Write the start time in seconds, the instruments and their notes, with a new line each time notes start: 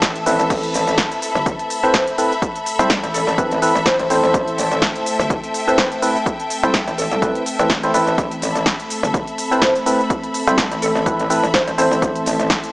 Already playing: string section A4 E5 E6
0.02 wobble bass A1, kick, snare, closed hi-hat, shaker
0.16 closed hi-hat, shaker
0.26 synth stab C4 E4 A4 B4, open hi-hat, shaker
0.40 wobble bass A1, closed hi-hat, shaker
0.50 wobble bass A1, ambient pad A3 C4 A4, kick, closed hi-hat, crash, shaker
0.63 closed hi-hat, shaker
0.71 string section B5, open hi-hat
0.75 shaker
0.87 wobble bass A1, closed hi-hat, shaker
0.98 kick, snare, closed hi-hat, shaker
1.12 closed hi-hat, shaker
1.22 open hi-hat, shaker
1.35 wobble bass G1, shaker
1.46 kick, closed hi-hat, shaker
1.59 closed hi-hat, shaker
1.70 open hi-hat, shaker
1.83 synth stab C4 E4 A4 B4, synth pluck C5, shaker
1.94 synth pluck C5, kick, snare, closed hi-hat, shaker
2.07 closed hi-hat, shaker
2.18 synth stab C4 E4 A4 B4, open hi-hat, shaker
2.32 shaker
2.42 kick, closed hi-hat, shaker
2.56 closed hi-hat, shaker
2.66 open hi-hat, shaker
2.79 wobble bass C2, synth stab C4 E4 A4 C5, closed hi-hat, shaker
2.90 kick, snare, closed hi-hat, shaker
3.03 wobble bass A1, closed hi-hat, shaker
3.14 synth pluck A4, open hi-hat, shaker
3.27 wobble bass A1, synth pluck A4, shaker
3.38 synth stab C4 E4 A4 B4, kick, closed hi-hat, shaker
3.51 closed hi-hat, shaker
3.62 synth stab C4 E4 A4 B4, open hi-hat, shaker
3.75 wobble bass A1, shaker
3.86 synth pluck C5, kick, snare, closed hi-hat, shaker
3.99 wobble bass A1, synth pluck C5, closed hi-hat, shaker
4.10 synth stab C4 E4 A4 C5, synth pluck C5, open hi-hat, shaker
4.24 wobble bass A1, shaker
4.34 wobble bass A1, kick, closed hi-hat, shaker
4.48 closed hi-hat, shaker
4.54 string section G5
4.58 open hi-hat, shaker
4.71 wobble bass A1, closed hi-hat, shaker
4.82 kick, snare, closed hi-hat, shaker
4.96 closed hi-hat, shaker
5.06 open hi-hat, shaker
5.20 wobble bass G1, shaker
5.30 kick, closed hi-hat, shaker
5.44 closed hi-hat, shaker
5.54 open hi-hat, shaker
5.67 synth stab C4 E4 A4 B4, synth pluck C5, shaker
5.78 synth pluck C5, kick, snare, closed hi-hat, shaker
5.92 closed hi-hat, shaker
6.02 synth stab C4 E4 A4 B4, open hi-hat, shaker
6.16 shaker
6.26 kick, closed hi-hat, shaker
6.40 closed hi-hat, shaker
6.50 open hi-hat, shaker
6.63 wobble bass C2, synth stab C4 E4 A4 C5, closed hi-hat, shaker
6.74 kick, snare, closed hi-hat, shaker
6.87 wobble bass A1, closed hi-hat, shaker
6.98 synth pluck A4, open hi-hat, shaker
7.11 wobble bass C2, synth pluck A4, closed hi-hat, shaker
7.22 synth stab C4 E4 A4 B4, kick, closed hi-hat, shaker
7.35 closed hi-hat, shaker
7.46 open hi-hat, shaker
7.59 wobble bass A1, synth stab C4 E4 A4 B4, closed hi-hat, shaker
7.70 kick, snare, closed hi-hat, shaker
7.83 synth stab C4 E4 A4 C5, closed hi-hat, shaker
7.94 wobble bass A1, synth stab C4 E4 A4 B4, open hi-hat, shaker
8.07 closed hi-hat, shaker
8.18 wobble bass A1, ambient pad A4, kick, closed hi-hat, shaker
8.31 closed hi-hat, shaker
8.38 string section B5, open hi-hat
8.43 shaker
8.55 wobble bass A1, closed hi-hat, shaker
8.66 kick, snare, closed hi-hat, shaker
8.80 closed hi-hat, shaker
8.90 open hi-hat, shaker
9.03 wobble bass G1, shaker
9.14 kick, closed hi-hat, shaker
9.27 closed hi-hat, shaker
9.38 open hi-hat, shaker
9.51 synth stab C4 E4 A4 B4, synth pluck C5, shaker
9.62 synth pluck C5, kick, snare, closed hi-hat, shaker
9.75 closed hi-hat, shaker
9.86 synth stab C4 E4 A4 B4, open hi-hat, shaker
10.00 shaker
10.10 kick, closed hi-hat, shaker
10.24 closed hi-hat, shaker
10.34 open hi-hat, shaker
10.47 wobble bass C2, synth stab C4 E4 A4 C5, closed hi-hat, shaker
10.58 kick, snare, closed hi-hat, shaker
10.71 wobble bass A1, closed hi-hat, shaker
10.82 synth pluck A4, open hi-hat, shaker
10.95 wobble bass A1, synth pluck A4, shaker
11.06 synth stab C4 E4 A4 B4, kick, closed hi-hat, shaker
11.19 closed hi-hat, shaker
11.30 synth stab C4 E4 A4 B4, open hi-hat, shaker
11.43 wobble bass A1, shaker
11.54 synth pluck C5, kick, snare, closed hi-hat, shaker
11.67 wobble bass A1, synth pluck C5, closed hi-hat, shaker
11.78 synth stab C4 E4 A4 C5, synth pluck C5, open hi-hat, shaker
11.91 wobble bass A1, shaker
12.02 wobble bass A1, kick, closed hi-hat, shaker
12.16 closed hi-hat, shaker
12.22 string section A5
12.26 open hi-hat, shaker
12.39 wobble bass A1, closed hi-hat, shaker
12.50 kick, snare, closed hi-hat, shaker
12.64 closed hi-hat, shaker